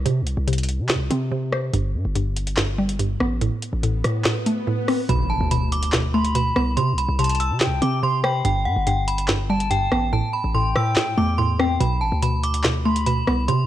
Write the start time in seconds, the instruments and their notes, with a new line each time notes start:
0.06 synth pluck C3, 808-style bass C3, closed hi-hat
0.21 808-style bass C2
0.27 closed hi-hat
0.37 808-style bass C2
0.48 synth pluck C3, closed hi-hat
0.53 closed hi-hat
0.58 closed hi-hat
0.63 closed hi-hat
0.69 closed hi-hat
0.79 808-style bass C3
0.89 synth pluck C3, snare, clap, closed hi-hat
0.95 808-style bass C2
1.10 808-style bass C3, synth pluck C4, closed hi-hat
1.32 synth pluck C3
1.52 synth pluck C5, cross-stick
1.74 808-style bass G1, synth pluck G2, closed hi-hat
1.94 808-style bass G2
2.05 808-style bass G1
2.15 synth pluck G2, closed hi-hat
2.36 closed hi-hat
2.47 closed hi-hat
2.57 synth pluck G2, snare, clap
2.78 synth pluck G3
2.89 closed hi-hat
2.99 synth pluck G2, closed hi-hat
3.20 808-style bass A1, synth pluck B3, cross-stick
3.41 synth pluck A2, closed hi-hat, swell
3.62 closed hi-hat
3.73 808-style bass A1
3.83 synth pluck A2, closed hi-hat
4.04 808-style bass A2, cross-stick, closed hi-hat
4.25 synth pluck A2, snare, clap, closed hi-hat
4.46 synth pluck A3, closed hi-hat
4.67 synth pluck A2
4.88 synth pluck C4, cross-stick, open hi-hat
5.09 808-style bass B1, synth pluck B2, synth bell B5, closed hi-hat, impact
5.30 808-style bass A1, synth bell A5
5.41 808-style bass D2
5.51 synth pluck B2, synth bell B5, closed hi-hat
5.72 synth bell D6, closed hi-hat
5.83 closed hi-hat
5.92 synth pluck B2, snare, clap
6.14 synth pluck A3, flute B5, synth bell C6
6.25 closed hi-hat
6.35 synth pluck B2, synth bell B5, closed hi-hat
6.56 808-style bass C2, synth pluck B3, synth bell B5, cross-stick
6.77 808-style bass C3, synth pluck C3, synth bell C6, closed hi-hat
6.93 808-style bass C2
6.98 synth bell B5, closed hi-hat
7.08 808-style bass C2
7.19 synth pluck C3, flute A5, synth bell C6, closed hi-hat
7.24 closed hi-hat
7.29 closed hi-hat
7.35 closed hi-hat
7.40 synth bell E6, closed hi-hat
7.50 808-style bass C3
7.60 synth pluck C3, flute G5, snare, clap, closed hi-hat
7.66 808-style bass C2
7.82 808-style bass C3, synth pluck C4, synth bell D6, closed hi-hat
8.03 synth pluck C3, flute C6, synth bell C6
8.24 synth pluck C5, synth bell G5, flute B5, cross-stick
8.45 808-style bass G1, synth pluck G2, synth bell G5, closed hi-hat
8.65 808-style bass G2, synth bell F#5
8.76 808-style bass G1
8.87 synth pluck G2, synth bell G5, closed hi-hat
9.08 synth bell B5, closed hi-hat
9.18 closed hi-hat
9.28 synth pluck G2, snare, clap
9.50 synth pluck G3, flute A5, synth bell A5
9.60 closed hi-hat
9.71 synth pluck G2, synth bell G5, closed hi-hat
9.92 808-style bass A1, synth pluck B3, synth bell G5, cross-stick
10.13 synth pluck A2, synth bell A5
10.33 synth bell B5
10.44 808-style bass A1
10.54 synth pluck A2, flute G5, synth bell C6
10.76 808-style bass A2, synth bell E6, cross-stick
10.96 synth pluck A2, snare, clap
11.18 808-style bass E2, synth pluck A3, synth bell D6
11.38 synth pluck A2, synth bell C6
11.60 synth pluck C4, synth bell G5, cross-stick
11.80 808-style bass B1, synth pluck B2, synth bell B5, closed hi-hat
12.01 808-style bass A1, synth bell A5
12.12 808-style bass D2
12.22 synth pluck B2, synth bell B5, closed hi-hat
12.43 synth bell D6, closed hi-hat
12.54 closed hi-hat
12.64 synth pluck B2, snare, clap
12.85 synth pluck A3, flute B5, synth bell C6
12.96 closed hi-hat
13.06 synth pluck B2, synth bell B5, closed hi-hat
13.27 808-style bass C2, synth pluck B3, synth bell B5, cross-stick
13.48 synth pluck C3, 808-style bass C3, synth bell C6, closed hi-hat